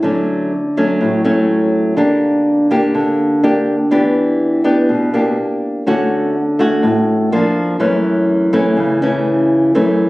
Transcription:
0.03 0.98 D3 medium
0.03 0.51 F#3 medium
0.03 0.52 A3 medium
0.03 0.52 C#4 medium
0.77 1.21 F#3 medium
0.77 1.21 A3 medium
0.77 1.22 C#4 medium
1.01 1.95 A2 medium
1.24 1.94 F#3 medium
1.24 1.94 A3 medium
1.24 1.94 C#4 medium
1.97 2.92 D3 medium
1.97 2.66 A#3 medium
1.97 2.67 D4 medium
1.97 2.67 G4 medium
2.71 3.40 A#3 medium
2.71 3.40 D4 medium
2.71 3.40 G4 medium
2.95 3.90 D3 medium
3.43 3.75 A#3 medium
3.43 3.75 D4 medium
3.43 3.75 G4 medium
3.91 4.86 E3 medium
3.91 4.61 B3 medium
3.91 4.61 D4 medium
3.91 4.61 G4 medium
4.64 5.09 B3 medium
4.64 5.10 D4 medium
4.64 5.10 G4 medium
4.89 5.35 B2 medium
5.14 5.83 A#3 medium
5.14 5.83 D4 medium
5.14 5.83 G4 medium
5.87 6.81 D3 medium
5.87 6.35 A3 medium
5.87 6.35 C#4 medium
5.87 6.35 F#4 medium
6.59 7.28 A3 medium
6.59 7.29 C#4 medium
6.59 7.29 F#4 medium
6.83 7.30 A2 medium
7.32 7.77 F3 medium
7.32 7.77 A#3 medium
7.32 7.78 D4 medium
7.80 8.75 F#2 medium
7.80 8.49 E3 medium
7.80 8.50 A3 medium
7.80 8.50 C#4 medium
8.53 8.98 E3 medium
8.53 8.98 A3 medium
8.53 8.99 C#4 medium
8.77 9.73 C#3 medium
9.02 9.71 E3 medium
9.02 9.72 A3 medium
9.02 9.72 C#4 medium
9.75 10.09 F#2 medium
9.75 10.09 E3 medium
9.75 10.09 A3 medium
9.75 10.09 C#4 medium

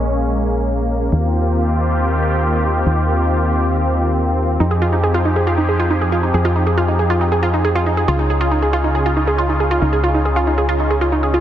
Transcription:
0.00 1.10 A#1 medium
0.00 1.09 G#3 medium
0.00 4.56 A#3 medium
0.00 1.09 C#4 medium
1.12 2.84 D#2 medium
1.12 4.57 D#3 medium
1.12 8.04 C4 medium
1.12 4.57 F4 medium
1.12 4.57 G4 medium
2.86 4.58 D#2 medium
4.60 6.32 F2 medium
4.60 8.04 F3 medium
4.60 4.65 D#4 medium
4.60 11.40 D#4 medium
4.60 8.04 G4 medium
4.60 11.40 G#4 medium
4.71 4.75 G#4 medium
4.82 4.89 F4 medium
4.93 4.97 D#4 medium
5.04 5.08 G#4 medium
5.14 5.21 F4 medium
5.25 5.30 D#4 medium
5.36 5.41 G#4 medium
5.47 5.54 F4 medium
5.58 5.62 D#4 medium
5.69 5.73 G#4 medium
5.80 5.86 F4 loud
5.90 5.95 D#4 medium
6.01 6.06 G#4 medium
6.12 6.19 F4 medium
6.23 6.28 D#4 medium
6.34 8.06 F2 medium
6.34 6.39 G#4 medium
6.45 6.52 F4 loud
6.56 6.60 D#4 medium
6.67 6.71 G#4 medium
6.78 6.84 F4 medium
6.88 6.93 D#4 medium
6.99 7.04 G#4 medium
7.10 7.17 F4 medium
7.21 7.25 D#4 medium
7.32 7.36 G#4 medium
7.43 7.49 F4 medium
7.54 7.58 D#4 medium
7.65 7.69 G#4 medium
7.75 7.82 F4 medium
7.86 7.91 D#4 medium
7.97 8.02 G#4 medium
8.08 9.80 C#2 medium
8.08 11.40 C#3 medium
8.08 11.40 C#4 medium
8.08 11.40 F4 medium
8.08 8.15 F4 medium
8.19 8.23 D#4 medium
8.30 8.34 G#4 medium
8.41 8.47 F4 medium
8.51 8.56 D#4 medium
8.62 8.67 G#4 medium
8.73 8.80 F4 loud
8.84 8.89 D#4 medium
8.95 8.99 G#4 medium
9.06 9.12 F4 medium
9.17 9.21 D#4 medium
9.27 9.32 G#4 medium
9.38 9.45 F4 loud
9.49 9.54 D#4 medium
9.60 9.65 G#4 medium
9.71 9.78 F4 loud
9.82 11.40 C#2 medium
9.82 9.86 D#4 medium
9.93 9.97 G#4 medium
10.04 10.10 F4 medium
10.14 10.19 D#4 medium
10.25 10.30 G#4 medium
10.36 10.43 F4 loud
10.47 10.52 D#4 medium
10.58 10.62 G#4 medium
10.69 10.76 F4 loud
10.80 10.84 D#4 medium
10.90 10.95 G#4 medium
11.01 11.08 F4 loud
11.12 11.17 D#4 medium
11.23 11.28 G#4 medium
11.34 11.40 F4 medium

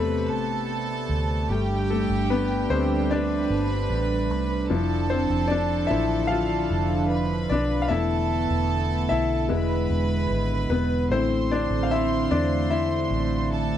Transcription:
0.00 0.29 E2 medium
0.00 1.46 C3 medium
0.00 1.47 C3 medium
0.00 1.51 A3 medium
0.00 4.66 A3 medium
0.00 1.52 B3 medium
0.00 1.52 C4 medium
0.00 1.52 D4 medium
0.00 1.06 A4 medium
0.00 0.27 B4 medium
0.00 1.52 B4 medium
0.00 1.52 C5 loud
0.00 1.51 D5 loud
0.00 0.27 B5 loud
0.29 1.06 A1 loud
0.29 1.48 A4 medium
0.29 1.48 A5 medium
1.09 1.47 D2 medium
1.49 2.06 G1 loud
1.49 4.67 G3 medium
1.49 2.69 G3 medium
1.49 1.91 A3 medium
1.49 4.67 D4 medium
1.49 3.07 G4 medium
1.49 3.07 G5 medium
1.90 2.28 A3 medium
1.90 2.31 A4 medium
2.10 2.66 G1 medium
2.30 2.68 B3 medium
2.30 2.70 B4 medium
2.70 3.46 D2 medium
2.70 3.06 G3 medium
2.70 3.07 A3 soft
2.70 3.08 C4 medium
2.70 3.07 B4 medium
2.70 3.11 C5 medium
3.09 3.87 D4 medium
3.09 4.66 B4 medium
3.09 3.86 D5 loud
3.09 4.67 B5 medium
3.50 3.87 G1 loud
3.90 4.31 A1 medium
4.31 4.68 C2 medium
4.69 5.26 F1 loud
4.69 13.78 D3 medium
4.69 5.86 F3 medium
4.69 7.87 F3 medium
4.69 5.50 D4 medium
4.69 7.87 D4 medium
4.69 5.86 E4 medium
4.69 7.06 A4 medium
4.69 7.06 A5 medium
5.10 5.20 C4 medium
5.10 5.19 C5 medium
5.30 5.86 F1 loud
5.48 5.88 D4 medium
5.48 5.90 D5 medium
5.87 6.66 A1 medium
5.87 6.26 F3 medium
5.87 6.26 D4 medium
5.87 6.28 E4 medium
5.87 6.30 E5 loud
6.27 7.05 F5 loud
6.32 7.07 F4 medium
6.70 7.46 F1 loud
7.10 7.89 B4 medium
7.10 7.88 B5 medium
7.50 7.88 B1 loud
7.50 7.82 D4 medium
7.50 7.84 D5 medium
7.82 7.89 F5 medium
7.88 8.46 E1 loud
7.88 9.06 A3 medium
7.88 9.49 A3 medium
7.88 9.06 B3 medium
7.88 11.08 B3 medium
7.88 9.06 E4 medium
7.88 9.47 A4 medium
7.88 9.05 E5 loud
7.88 9.47 A5 loud
8.50 9.06 E1 medium
9.09 9.48 B1 medium
9.09 9.49 E4 medium
9.09 10.26 E5 loud
9.49 9.87 E1 loud
9.49 10.03 G#3 medium
9.49 11.08 G#3 medium
9.49 10.03 B3 medium
9.49 10.03 E4 medium
9.49 11.07 B4 medium
9.49 11.07 B5 medium
9.90 10.27 E1 medium
10.30 10.67 G#1 medium
10.70 11.07 E1 medium
10.70 11.08 B3 medium
10.70 11.11 B4 medium
11.10 11.66 A1 loud
11.10 13.78 A3 medium
11.10 13.78 C4 medium
11.10 11.49 C4 medium
11.10 11.90 E4 medium
11.10 13.46 C5 medium
11.10 11.52 C5 medium
11.10 13.46 C6 loud
11.52 11.82 D4 medium
11.52 11.85 D5 loud
11.70 12.26 A1 loud
11.83 11.90 F5 medium
11.91 12.28 E4 medium
11.91 12.32 E5 loud
12.31 13.06 E2 medium
12.31 12.68 D4 medium
12.31 12.72 D5 loud
12.70 13.78 E4 medium
12.70 13.78 E5 loud
13.11 13.78 A1 loud
13.50 13.78 A4 medium
13.50 13.78 A5 medium

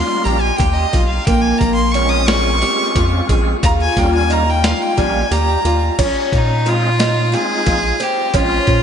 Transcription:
0.00 0.40 G3 medium
0.00 0.40 A#3 medium
0.00 0.40 C#4 medium
0.00 0.19 F4 medium
0.00 0.40 F4 medium
0.00 0.26 C6 medium
0.24 0.52 A#1 loud
0.24 0.53 G4 medium
0.24 0.42 A#5 medium
0.24 closed hi-hat medium
0.40 0.58 G#5 medium
0.56 0.85 D#2 medium
0.56 0.86 G4 medium
0.56 0.74 G5 medium
0.56 kick medium
0.56 closed hi-hat medium
0.73 1.06 D#5 medium
0.93 1.19 B1 loud
0.93 1.20 F4 medium
0.93 kick medium
0.93 closed hi-hat medium
1.07 1.26 F5 medium
1.25 1.53 A#1 medium
1.25 1.81 A#3 loud
1.25 1.43 G5 medium
1.25 kick loud
1.25 closed hi-hat medium
1.41 1.59 G#5 medium
1.58 2.64 A#1 loud
1.58 1.74 A#5 medium
1.58 kick medium
1.58 closed hi-hat medium
1.75 1.93 C6 medium
1.91 2.61 G#3 medium
1.91 2.61 C4 medium
1.91 2.22 C#4 medium
1.91 2.61 F4 medium
1.91 2.10 C#6 medium
1.91 closed hi-hat medium
1.96 2.62 C#4 medium
2.09 2.27 D#6 loud
2.26 2.55 G#4 medium
2.26 3.28 C#6 loud
2.26 snare loud
2.26 closed hi-hat medium
2.62 3.56 G#3 medium
2.62 3.56 C4 medium
2.62 3.57 C#4 soft
2.62 3.56 F4 medium
2.62 2.89 G4 medium
2.62 snare soft
2.62 closed hi-hat medium
2.96 3.21 F2 loud
2.96 3.23 F4 medium
2.96 kick loud
2.96 snare soft
2.96 closed hi-hat medium
3.29 3.55 A#1 medium
3.29 3.56 G#4 medium
3.29 kick medium
3.29 closed hi-hat medium
3.63 3.89 D#2 medium
3.63 4.17 F4 loud
3.63 3.71 A#5 loud
3.63 kick loud
3.63 closed hi-hat medium
3.81 4.00 G#5 loud
3.97 4.74 D#2 medium
3.97 4.44 G3 medium
3.97 4.44 A#3 medium
3.97 4.44 C#4 medium
3.97 4.44 F4 medium
3.97 4.14 G5 medium
3.97 kick medium
3.97 snare soft
3.97 closed hi-hat medium
4.15 4.33 G#5 medium
4.30 4.57 D#4 medium
4.30 4.51 A#5 medium
4.30 closed hi-hat medium
4.50 4.67 G5 loud
4.64 4.91 F4 medium
4.64 4.83 F5 medium
4.64 snare loud
4.64 closed hi-hat medium
4.82 4.99 G5 medium
4.97 5.24 A#1 medium
4.97 5.24 G3 medium
4.97 5.21 G3 medium
4.97 5.22 A#3 medium
4.97 5.22 C#4 medium
4.97 5.22 F4 medium
4.97 5.33 G#5 medium
4.97 kick medium
4.97 closed hi-hat medium
5.31 5.57 D#2 medium
5.31 5.58 G4 medium
5.31 5.99 A#5 medium
5.31 closed hi-hat medium
5.65 5.90 D#2 medium
5.65 5.92 F4 medium
5.65 closed hi-hat medium
5.99 6.11 A#1 medium
5.99 6.52 C#4 medium
5.99 kick loud
5.99 closed hi-hat medium
5.99 crash medium
6.03 6.37 C#4 medium
6.32 7.35 A#2 medium
6.32 6.70 D#4 medium
6.32 kick medium
6.32 closed hi-hat medium
6.66 6.89 G#3 medium
6.66 6.90 C4 medium
6.66 6.90 D#4 medium
6.66 6.93 F4 medium
6.66 6.90 F4 medium
6.66 7.36 F4 loud
6.66 closed hi-hat medium
6.99 7.26 D#4 medium
6.99 snare medium
6.99 closed hi-hat medium
7.32 7.80 G#3 medium
7.32 7.80 C4 medium
7.32 7.80 D#4 soft
7.32 7.59 F4 medium
7.32 7.81 F4 medium
7.32 8.04 G#4 loud
7.32 snare soft
7.32 closed hi-hat medium
7.66 7.93 A#1 loud
7.66 7.94 F4 medium
7.66 kick loud
7.66 snare soft
7.66 closed hi-hat medium
8.00 8.27 C4 medium
8.00 8.35 G4 medium
8.00 closed hi-hat medium
8.34 8.60 A#1 loud
8.34 8.58 G#3 medium
8.34 8.58 C4 medium
8.34 8.83 C#4 medium
8.34 8.58 C#4 medium
8.34 8.83 F4 loud
8.34 8.58 F4 medium
8.34 kick loud
8.34 closed hi-hat medium
8.67 8.83 A#2 medium
8.67 kick medium
8.67 closed hi-hat medium

